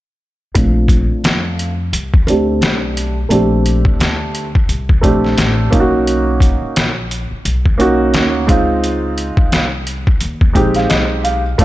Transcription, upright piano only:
0.55 1.69 A3 medium
0.55 1.70 C4 medium
0.55 1.70 D4 medium
0.55 1.71 F4 medium
2.27 3.14 A3 medium
2.27 3.15 C4 medium
2.27 3.16 D4 medium
2.27 3.16 G4 medium
3.29 4.44 A3 medium
3.29 4.45 C4 medium
3.29 4.45 D4 medium
3.29 4.46 G4 medium
5.01 5.72 A3 medium
5.01 5.72 C4 medium
5.01 5.73 D4 medium
5.01 5.73 G4 medium
5.71 6.86 A#3 medium
5.71 6.86 C#4 medium
5.71 6.87 D#4 medium
5.71 5.81 F4 medium
5.80 6.91 F#4 medium
7.78 8.48 A#3 medium
7.78 8.48 C#4 medium
7.78 8.47 D#4 medium
7.78 8.49 F#4 medium
8.47 9.62 G#3 medium
8.47 9.62 C4 medium
8.47 9.63 D#4 medium
8.47 9.64 F4 medium
10.53 11.42 G#3 medium
10.53 11.42 C4 medium
10.53 11.43 D#4 medium
10.53 11.43 G4 medium
10.53 10.74 G5 medium
10.76 10.89 F5 medium
10.89 11.22 D#5 medium
11.24 11.56 F5 medium
11.58 11.65 A3 medium
11.58 11.65 C4 medium
11.58 11.65 D4 medium
11.58 11.65 F4 loud

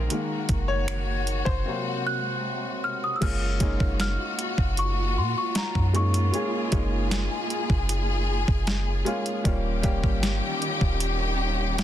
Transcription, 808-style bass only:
0.49 1.43 F#1 loud
1.46 1.65 F#1 loud
3.22 3.59 F#1 loud
3.61 3.79 F#1 medium
3.80 4.18 F#1 loud
4.58 5.18 F#1 loud
5.17 5.35 A#2 loud
5.75 6.31 F#2 loud
6.72 7.29 F#1 loud
7.70 8.45 F#1 loud
8.48 9.04 F#1 loud
9.45 9.83 D#1 loud
9.84 10.03 D#1 loud
10.04 10.41 G1 loud
10.81 11.84 D#1 loud

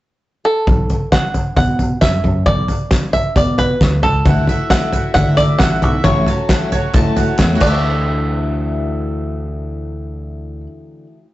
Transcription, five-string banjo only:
0.45 1.12 A4 medium
1.12 1.56 F#5 medium
1.57 2.01 F#5 medium
2.01 2.46 E5 medium
2.46 3.13 D5 medium
3.13 3.36 E5 medium
3.37 3.60 D5 medium
3.59 4.05 B4 medium
4.03 4.73 A4 medium
4.70 5.13 F#5 medium
5.14 5.36 F#5 medium
5.37 5.61 D5 medium
5.59 6.03 F#5 medium
6.04 7.35 C#5 medium
7.61 10.66 D5 medium

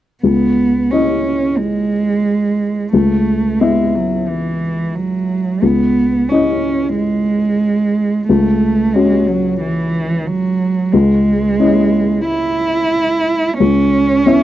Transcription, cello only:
0.23 0.92 B3 medium
0.91 1.59 C#4 soft
1.57 2.92 G#3 medium
2.92 3.61 A3 medium
3.60 3.96 G#3 soft
3.95 4.30 F#3 soft
4.28 4.96 E3 soft
4.95 5.65 F#3 medium
5.63 6.30 B3 medium
6.29 6.95 C#4 soft
6.96 8.26 G#3 medium
8.27 8.95 A3 medium
8.93 9.29 G#3 medium
9.27 9.60 F#3 medium
9.61 10.28 E3 medium
10.27 10.94 F#3 medium
10.92 12.25 G#3 medium
12.26 13.56 E4 medium
13.58 14.43 C#4 medium

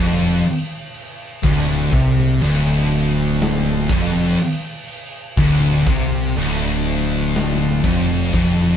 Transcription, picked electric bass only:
0.00 0.42 F1 medium
1.44 1.90 D1 loud
1.93 2.39 C2 loud
2.43 3.86 D1 loud
3.89 4.36 F1 loud
5.37 5.83 D1 loud
5.87 6.33 C2 loud
6.36 7.80 D1 loud
7.84 8.30 F1 loud
8.33 8.77 F1 loud

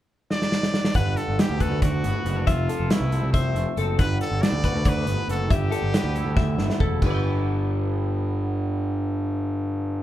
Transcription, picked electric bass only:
0.95 1.15 G1 medium
1.28 1.38 G1 medium
1.50 1.69 D2 medium
1.71 2.00 D2 medium
2.04 2.13 G1 medium
2.25 2.44 F#1 medium
2.47 2.67 F1 medium
2.80 2.89 F1 medium
3.01 3.20 C2 medium
3.23 3.52 C2 medium
3.55 3.65 F1 medium
3.77 3.96 F#1 medium
3.99 4.18 G1 medium
4.31 4.41 G1 medium
4.52 4.72 D2 medium
4.74 5.04 D2 medium
5.06 5.16 G1 medium
5.28 5.48 F#1 medium
5.50 5.70 G1 medium
5.82 5.92 G1 medium
6.04 6.24 D2 medium
6.25 6.55 D2 medium
6.58 6.68 G1 medium
6.80 7.00 E1 medium
7.02 10.03 G1 medium

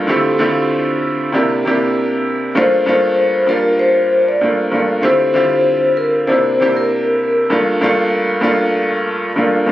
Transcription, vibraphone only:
2.57 3.46 C5 loud
3.49 3.77 A#4 medium
3.79 4.25 C5 medium
4.28 4.56 D5 medium
5.03 5.92 C5 medium
5.97 6.25 A#4 medium
6.27 6.73 C5 medium
6.77 7.48 A#4 medium

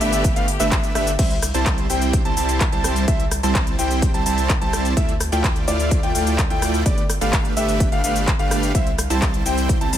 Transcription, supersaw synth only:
0.01 0.33 A3 medium
0.01 0.33 D4 medium
0.01 0.33 G4 medium
0.01 0.33 B4 medium
0.01 0.33 E5 loud
0.36 0.46 A3 loud
0.36 0.46 D4 medium
0.36 0.46 G4 medium
0.36 0.46 B4 medium
0.36 0.46 F5 loud
0.60 0.93 A3 medium
0.60 0.93 D4 medium
0.60 0.92 G4 medium
0.60 0.92 B4 medium
0.60 0.92 E5 loud
0.95 1.11 A3 medium
0.95 1.11 D4 medium
0.95 1.11 G4 medium
0.95 1.11 B4 medium
0.95 1.11 E5 medium
1.19 1.35 G3 medium
1.19 1.35 C4 medium
1.19 1.35 E4 medium
1.19 1.35 C5 medium
1.19 1.35 E5 medium
1.54 1.87 G3 medium
1.54 1.87 C4 medium
1.54 1.87 E4 medium
1.54 1.87 C5 medium
1.54 1.87 A5 medium
1.90 2.22 G3 medium
1.90 2.22 C4 medium
1.90 2.22 E4 medium
1.90 2.22 C5 medium
1.90 2.22 G5 loud
2.25 2.35 G3 loud
2.25 2.35 C4 medium
2.25 2.35 E4 medium
2.25 2.35 C5 medium
2.25 2.35 A5 loud
2.37 2.62 G3 medium
2.37 2.62 C4 medium
2.37 2.62 E4 medium
2.37 2.62 C5 medium
2.37 2.62 A5 medium
2.72 3.05 G3 medium
2.72 3.05 C4 medium
2.72 3.05 E4 medium
2.72 3.05 C5 medium
2.72 3.05 A5 loud
3.43 3.76 G3 medium
3.43 3.76 C4 medium
3.43 3.76 E4 medium
3.43 3.76 C5 medium
3.43 3.76 A5 medium
3.79 4.11 G3 medium
3.79 4.11 C4 medium
3.79 4.11 E4 medium
3.79 4.11 C5 medium
3.79 4.11 G5 loud
4.14 4.24 G3 loud
4.14 4.24 C4 medium
4.14 4.24 E4 medium
4.14 4.24 C5 medium
4.14 4.24 A5 loud
4.26 4.51 G3 medium
4.26 4.51 C4 medium
4.26 4.51 E4 medium
4.26 4.51 C5 medium
4.26 4.51 A5 medium
4.61 4.94 G3 loud
4.61 4.94 C4 medium
4.61 4.94 E4 medium
4.61 4.94 C5 medium
4.61 4.94 A5 loud
4.97 5.13 A3 medium
4.97 5.13 E4 medium
4.97 5.13 F4 medium
4.97 5.13 D5 medium
4.97 5.13 E5 loud
5.32 5.65 A3 medium
5.32 5.65 E4 medium
5.32 5.65 F4 medium
5.32 5.65 D5 medium
5.32 5.65 G5 medium
5.68 6.00 A3 medium
5.68 6.00 E4 medium
5.68 6.00 F4 medium
5.68 6.00 D5 medium
5.68 6.00 F5 loud
6.03 6.13 A3 loud
6.03 6.13 E4 medium
6.03 6.13 F4 loud
6.03 6.13 D5 medium
6.03 6.13 G5 loud
6.15 6.40 A3 medium
6.15 6.40 E4 medium
6.15 6.40 F4 medium
6.15 6.40 D5 medium
6.15 6.40 G5 medium
6.50 6.83 A3 medium
6.50 6.83 E4 medium
6.50 6.83 F4 medium
6.50 6.83 D5 medium
6.50 6.83 G5 loud
6.86 7.02 A3 medium
6.86 7.02 D4 medium
6.86 7.02 G4 medium
6.86 7.02 B4 medium
6.86 7.02 D5 loud
7.21 7.54 A3 medium
7.21 7.54 D4 medium
7.21 7.54 G4 medium
7.21 7.54 B4 medium
7.21 7.54 F5 medium
7.57 7.89 A3 medium
7.57 7.89 D4 medium
7.57 7.89 G4 medium
7.57 7.89 B4 medium
7.57 7.89 E5 loud
7.92 8.02 A3 loud
7.92 8.02 D4 loud
7.92 8.02 G4 medium
7.92 8.02 B4 medium
7.92 8.02 F5 loud
8.04 8.29 A3 medium
8.04 8.29 D4 medium
8.04 8.29 G4 medium
8.04 8.29 B4 medium
8.04 8.29 F5 medium
8.39 8.72 A3 medium
8.39 8.72 D4 medium
8.39 8.72 G4 medium
8.39 8.72 B4 medium
8.39 8.72 F5 loud
8.75 8.91 G3 medium
8.75 8.91 C4 medium
8.75 8.91 E4 medium
8.75 8.91 E5 loud
9.10 9.43 G3 medium
9.10 9.43 C4 medium
9.10 9.43 E4 medium
9.10 9.43 C5 medium
9.10 9.43 A5 medium
9.45 9.78 G3 medium
9.45 9.78 C4 medium
9.45 9.78 E4 medium
9.45 9.78 C5 medium
9.45 9.78 G5 loud
9.81 9.90 G3 loud
9.81 9.90 C4 medium
9.81 9.91 E4 medium
9.81 9.91 C5 medium
9.81 9.91 A5 loud
9.93 9.98 G3 medium
9.93 9.98 C4 medium
9.93 9.98 E4 medium
9.93 9.98 C5 medium
9.93 9.98 A5 medium

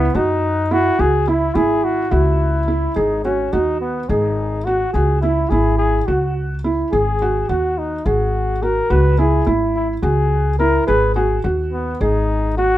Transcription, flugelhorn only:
0.00 0.17 B3 medium
0.16 0.74 D#4 medium
0.73 1.02 F#4 medium
1.00 1.30 G#4 medium
1.29 1.57 E4 medium
1.56 1.86 G#4 medium
1.84 2.14 F#4 medium
2.12 2.98 E4 medium
2.96 3.24 D#4 medium
3.24 3.54 C#4 medium
3.53 3.80 D#4 medium
3.81 4.11 B3 medium
4.09 4.67 D#4 medium
4.65 4.93 F#4 medium
4.93 5.20 G#4 medium
5.22 5.51 E4 medium
5.50 5.78 G#4 medium
5.78 6.08 G#4 medium
6.07 6.35 F#4 medium
6.92 7.51 G#4 medium
7.49 7.80 F#4 medium
7.79 8.08 D#4 medium
8.06 8.64 F#4 medium
8.63 8.93 A#4 medium
8.91 9.20 B4 medium
9.19 9.47 G#4 medium
9.76 9.88 E4 medium
10.04 10.56 G#4 medium
10.59 10.85 A#4 medium
10.87 11.14 B4 medium
11.15 11.42 G#4 medium
11.73 12.03 B3 medium
12.02 12.57 D#4 medium
12.57 12.78 F#4 medium

